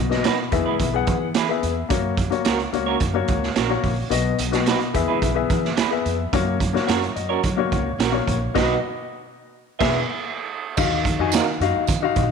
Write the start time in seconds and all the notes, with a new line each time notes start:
Already playing: B1 B2
0.09 B3 F#4 D#5, snare
0.23 B3 D#4 F#4 B4, snare, closed hi-hat
0.51 E2 E3 B3 G#4 E5, kick, closed hi-hat
0.66 C#2 B3 E4 G#4 B4
0.79 B1, kick, closed hi-hat
0.93 B3 G#4 F#5
1.07 E3, kick, closed hi-hat
1.34 B3 E4 G#4 B4, snare, closed hi-hat
1.48 B3 G#4 E5
1.63 E2, closed hi-hat
1.89 F#2 A#3 F#4 C#5, kick, closed hi-hat
2.17 kick, closed hi-hat
2.30 A#3 F#4 C#5, closed hi-hat
2.45 C#2 C#4 F#4 A#4 C#5, snare, closed hi-hat
2.60 closed hi-hat
2.73 C#2 A#3 F#4 C#5, closed hi-hat
2.86 C#4 F#4 A#4 C#5
3.00 F#2, kick, closed hi-hat
3.14 A#3 F#4 C#5
3.28 C#2, kick, closed hi-hat
3.43 snare
3.56 A#1 C#4 F#4 A#4 C#5, snare, closed hi-hat
3.69 A#3 F#4 C#5
3.84 A#1, kick, open hi-hat
4.10 B1 B2 B3 F#4 D#5, closed hi-hat
4.39 B1, closed hi-hat
4.51 B3 F#4 D#5, snare, closed hi-hat
4.66 B3 D#4 F#4 B4, snare, closed hi-hat
4.81 closed hi-hat
4.94 E2 E3 B3 G#4 E5, kick, closed hi-hat
5.08 C#2 B3 E4 G#4 B4
5.22 B1, kick, closed hi-hat
5.35 B3 G#4 E5
5.50 E3, kick, closed hi-hat
5.65 snare
5.77 E2 B3 E4 G#4 B4, snare, closed hi-hat
5.90 B3 G#4 E5
6.05 F2, closed hi-hat
6.33 F#2 A#3 F#4 C#5, kick, closed hi-hat
6.60 kick, closed hi-hat
6.73 A#3 F#4 C#5, snare
6.87 F#2 C#4 F#4 A#4 C#5 F#5, snare, closed hi-hat
7.03 closed hi-hat
7.16 F#2 D#5, closed hi-hat
7.29 C#4 F#4 A#4 C#5
7.43 F#3, kick, closed hi-hat
7.56 A#3 F#4 C#5
7.72 C#2, kick, closed hi-hat
7.98 A#1 C#4 F#4 A#4 C#5, snare, closed hi-hat
8.12 A#3 F#4 C#5
8.28 A#1, kick, closed hi-hat
8.54 B1 B2 B3 D#4 F#4 B4 D#5, kick, snare, crash
9.79 E1 B3 E4 G#4 B4 E5, kick, snare, crash
10.77 D#2 D#3 D#4 F#4 F5, kick, crash, tambourine
11.05 kick, closed hi-hat
11.19 F2 D#4 F#4 G#5
11.32 D#4 F#4 A#4 F5, snare, closed hi-hat, tambourine
11.60 F#2 D#4 F#4 F5, closed hi-hat
11.75 D#2
11.87 D#3, kick, closed hi-hat, tambourine
12.02 D#4 F#4 F5
12.16 A#1, kick, closed hi-hat